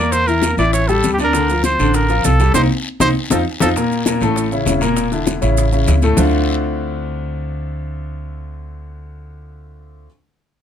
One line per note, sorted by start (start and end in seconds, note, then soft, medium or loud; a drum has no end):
0.00 0.53 E2 medium
0.00 0.23 A#3 medium
0.00 0.23 A#4 medium
0.00 0.13 D5 medium
0.12 0.29 C5 medium
0.12 high bongo medium
0.12 high conga soft
0.12 long guiro medium
0.12 maracas medium
0.27 0.40 E3 medium
0.27 0.40 E4 medium
0.27 0.58 A#4 medium
0.27 high bongo soft
0.27 high conga soft
0.27 maracas soft
0.42 0.56 A#3 medium
0.42 0.56 A#4 medium
0.42 high bongo medium
0.42 high conga medium
0.42 short guiro medium
0.42 maracas medium
0.57 1.00 A1 medium
0.57 0.83 E3 medium
0.57 0.83 E4 medium
0.57 0.72 D5 medium
0.57 high bongo soft
0.57 high conga soft
0.57 short guiro medium
0.57 maracas soft
0.73 0.89 C#5 medium
0.73 high bongo medium
0.73 high conga soft
0.73 long guiro medium
0.73 maracas medium
0.88 1.14 G3 medium
0.88 1.14 G4 medium
0.88 1.13 A4 medium
0.88 high conga soft
0.88 maracas soft
1.03 1.74 D2 medium
1.03 high bongo soft
1.03 low bongo medium
1.03 high conga medium
1.03 short guiro medium
1.03 maracas medium
1.14 1.18 G4 medium
1.18 1.32 D4 medium
1.18 1.32 D5 medium
1.18 high bongo soft
1.18 high conga medium
1.18 short guiro medium
1.18 maracas soft
1.24 1.61 A#4 medium
1.33 1.47 D3 medium
1.33 1.47 D4 medium
1.33 high bongo medium
1.33 high conga soft
1.33 long guiro medium
1.33 maracas medium
1.49 1.75 F3 medium
1.49 1.75 F4 medium
1.49 high bongo soft
1.49 high conga soft
1.49 maracas soft
1.64 1.97 C5 medium
1.64 high bongo medium
1.64 high conga medium
1.64 short guiro medium
1.64 maracas medium
1.79 2.22 A1 medium
1.79 2.04 D3 medium
1.79 2.05 D4 medium
1.79 high bongo soft
1.79 high conga soft
1.79 short guiro medium
1.79 maracas soft
1.94 2.26 A#4 medium
1.94 high bongo medium
1.94 high conga soft
1.94 long guiro medium
1.94 maracas medium
2.09 2.34 F3 medium
2.09 2.35 F4 medium
2.09 high conga soft
2.09 maracas soft
2.24 2.53 C2 medium
2.24 2.54 A4 medium
2.24 high bongo soft
2.24 low bongo medium
2.24 high conga medium
2.24 short guiro medium
2.24 maracas medium
2.39 2.53 G3 medium
2.39 2.53 G4 medium
2.39 high bongo soft
2.39 short guiro medium
2.39 maracas soft
2.54 2.66 C2 loud
2.54 2.65 A#3 loud
2.54 2.65 C4 loud
2.54 2.65 D#4 loud
2.54 2.62 C5 medium
2.54 low bongo medium
2.54 high conga medium
2.54 long guiro medium
2.54 maracas loud
3.00 3.11 C2 medium
3.00 3.10 A#3 medium
3.00 3.10 C4 loud
3.00 3.10 D#4 loud
3.00 3.08 C5 loud
3.00 low bongo medium
3.00 high conga medium
3.00 long guiro medium
3.00 maracas medium
3.30 3.42 F2 medium
3.30 3.41 C4 medium
3.30 3.41 D#4 medium
3.30 3.41 F4 medium
3.30 3.38 A4 medium
3.30 low bongo medium
3.30 high conga medium
3.30 long guiro medium
3.30 maracas medium
3.60 3.72 F2 medium
3.60 3.71 C4 medium
3.60 3.71 D#4 medium
3.60 3.71 F4 loud
3.60 3.69 A4 medium
3.60 low bongo loud
3.60 high conga medium
3.60 long guiro medium
3.60 maracas medium
3.76 4.01 A#2 medium
3.76 4.01 A#3 medium
3.76 4.01 A#4 medium
3.76 high bongo medium
3.76 high conga soft
3.76 long guiro medium
3.76 maracas medium
3.91 high bongo soft
3.91 high conga soft
3.91 maracas soft
4.06 4.19 A#2 medium
4.06 4.19 A#3 medium
4.06 4.19 A#4 medium
4.06 high bongo medium
4.06 high conga medium
4.06 short guiro medium
4.06 maracas medium
4.21 4.63 A1 medium
4.21 4.46 A2 medium
4.21 4.47 A3 medium
4.21 4.46 A4 medium
4.21 high bongo soft
4.21 high conga soft
4.21 short guiro medium
4.21 maracas soft
4.36 high bongo medium
4.36 high conga soft
4.36 long guiro medium
4.36 maracas medium
4.52 4.64 C#3 medium
4.52 4.64 C#4 medium
4.52 4.64 E4 medium
4.52 high conga soft
4.52 maracas soft
4.66 5.36 E1 medium
4.66 4.79 C#3 medium
4.66 4.79 C#4 medium
4.66 4.80 E4 medium
4.66 high bongo soft
4.66 low bongo medium
4.66 high conga medium
4.66 short guiro medium
4.66 maracas medium
4.81 5.06 A#2 medium
4.81 5.06 A#3 medium
4.81 5.07 A#4 medium
4.81 high bongo soft
4.81 high conga medium
4.81 short guiro medium
4.81 maracas soft
4.96 high bongo medium
4.96 high conga soft
4.96 long guiro medium
4.96 maracas medium
5.12 5.37 D3 medium
5.12 5.37 D4 medium
5.12 5.37 E4 medium
5.12 high bongo soft
5.12 high conga soft
5.12 maracas soft
5.27 high bongo medium
5.27 high conga medium
5.27 short guiro medium
5.27 maracas medium
5.41 5.85 A1 medium
5.41 5.66 C#3 medium
5.41 5.67 C#4 medium
5.41 5.67 E4 medium
5.41 high bongo soft
5.41 short guiro medium
5.41 maracas soft
5.57 high bongo medium
5.57 high conga soft
5.57 long guiro medium
5.57 maracas medium
5.72 5.97 C#3 medium
5.72 5.97 C#4 medium
5.72 5.97 E4 medium
5.72 high conga soft
5.72 maracas soft
5.87 6.14 D2 medium
5.87 high bongo soft
5.87 low bongo medium
5.87 high conga medium
5.87 short guiro medium
5.87 maracas medium
6.02 6.15 A2 medium
6.02 6.15 A3 medium
6.02 6.16 A4 medium
6.02 high bongo soft
6.02 high conga medium
6.02 short guiro medium
6.02 maracas soft
6.17 10.06 D2 medium
6.17 10.06 D3 medium
6.17 10.06 A3 medium
6.17 10.06 C4 medium
6.17 10.06 D4 medium
6.17 10.06 E4 medium
6.17 10.06 F4 medium
6.17 low bongo medium
6.17 low conga medium
6.17 long guiro medium
6.17 maracas medium